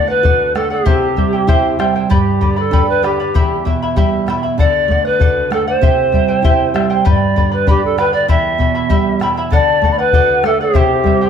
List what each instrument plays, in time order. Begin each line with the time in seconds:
Already playing: nylon-string guitar D3 A3, pan flute D5
0.08 pan flute B4, charango D5 F#5
0.23 nylon-string guitar F#4, charango A4 D5 F#5, bombo low
0.55 nylon-string guitar A3, charango A4 D5 F#5, pan flute A4, bombo rim
0.70 pan flute G4, charango D5 F#5
0.85 nylon-string guitar C3, charango E4 G4 C5 E5 G5, bombo low
1.16 nylon-string guitar G3, charango E4 C5 E5 G5, bombo low
1.33 charango E4 C5 G5
1.47 nylon-string guitar E4, charango E4 G4 C5 E5 G5, bombo low
1.79 nylon-string guitar G3, charango E4 C5 E5 G5, bombo rim
1.96 charango E4 C5 G5
2.10 nylon-string guitar G2, charango G4 B4 D5 G5 B5, pan flute G4, bombo low
2.41 nylon-string guitar D3, charango B4 D5 G5 B5, bombo low
2.56 pan flute A4, charango B4 D5 B5
2.71 nylon-string guitar D4, charango G4 B4 D5 G5 B5, bombo low
2.89 pan flute B4
3.03 nylon-string guitar D3, pan flute G4, charango B4 D5 G5 B5, bombo rim
3.20 charango B4 D5 B5
3.34 nylon-string guitar E2, charango E4 G4 E5 G5 B5, bombo low
3.65 nylon-string guitar B2, charango E4 E5 G5 B5, bombo low
3.82 charango E4 E5 B5
3.96 nylon-string guitar G3, charango E4 G4 E5 G5 B5, bombo low
4.26 nylon-string guitar B2, charango E4 E5 G5 B5, bombo rim
4.43 charango E4 E5 B5
4.58 nylon-string guitar D3, charango A4 D5 F#5, pan flute D5, bombo low
4.88 nylon-string guitar A3, charango A4 D5 F#5, bombo low
5.05 pan flute B4, charango D5 F#5
5.20 nylon-string guitar F#4, charango A4 D5 F#5, bombo low
5.50 nylon-string guitar A3, charango A4 D5 F#5, pan flute A4, bombo rim
5.68 pan flute C5, charango D5 F#5
5.81 nylon-string guitar C3, charango E4 G4 C5 E5 G5, bombo low
6.12 nylon-string guitar G3, charango E4 C5 E5 G5, bombo low
6.28 charango E4 C5 G5
6.42 nylon-string guitar E4, charango E4 G4 C5 E5 G5, bombo low
6.74 nylon-string guitar G3, charango E4 C5 E5 G5, bombo rim
6.90 charango E4 C5 G5
7.05 nylon-string guitar G2, charango G4 B4 D5 G5 B5, pan flute D5, bombo low
7.36 nylon-string guitar D3, charango B4 D5 G5 B5, bombo low
7.51 charango B4 D5 B5, pan flute B4
7.67 nylon-string guitar D4, charango G4 B4 D5 G5 B5, pan flute G4, bombo low
7.85 pan flute A4
7.98 nylon-string guitar D3, charango B4 D5 G5 B5, pan flute B4, bombo rim
8.13 charango B4 D5 B5, pan flute D5
8.28 nylon-string guitar E2, charango E4 G4 E5 G5 B5, pan flute E5, bombo low
8.58 nylon-string guitar B2, charango E4 E5 G5 B5, bombo low
8.75 charango E4 E5 B5
8.89 nylon-string guitar G3, charango E4 G4 E5 G5 B5, bombo low
9.20 nylon-string guitar B2, charango E4 E5 G5 B5, bombo rim
9.37 charango E4 E5 B5
9.50 nylon-string guitar D3, charango A4 D5 F#5, pan flute D5, quena A5, bombo low
9.81 nylon-string guitar A3, charango A4 D5 F#5, bombo low
9.91 pan flute D5, quena B5
9.98 pan flute B4, charango D5 F#5, quena F#5
10.13 nylon-string guitar F#4, charango A4 D5 F#5, bombo low
10.43 nylon-string guitar A3, charango A4 D5 F#5, pan flute A4, quena E5, bombo rim
10.61 pan flute G4, quena C5, charango D5 F#5
10.74 nylon-string guitar C3, charango E4 G4 C5 E5 G5, bombo low
11.04 nylon-string guitar G3, charango E4 C5 E5 G5, bombo low
11.21 charango E4 C5 G5